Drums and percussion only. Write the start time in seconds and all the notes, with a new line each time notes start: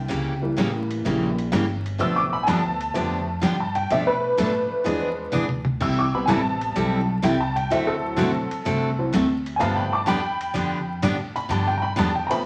0.11 ride
0.58 snare, hi-hat pedal, ride
0.91 ride
1.06 ride
1.38 ride
1.53 snare, hi-hat pedal, ride
1.86 ride
2.00 ride
2.48 snare, hi-hat pedal, ride
2.81 ride
2.95 ride
3.43 snare, hi-hat pedal, ride
3.75 ride
3.91 ride
4.38 snare, hi-hat pedal, ride
4.86 ride
5.33 hi-hat pedal, mid tom
5.49 mid tom
5.65 mid tom
5.81 kick, crash
6.29 snare, hi-hat pedal, ride
6.61 ride
6.76 ride
7.24 snare, hi-hat pedal, ride
7.57 ride
7.71 ride
8.19 snare, hi-hat pedal, ride
8.51 ride
8.66 ride
9.14 snare, hi-hat pedal, ride
9.46 ride
9.61 ride
10.08 snare, hi-hat pedal, ride
10.41 ride
10.56 ride
11.03 snare, hi-hat pedal, ride
11.36 ride
11.51 ride
11.99 snare, hi-hat pedal, ride
12.31 ride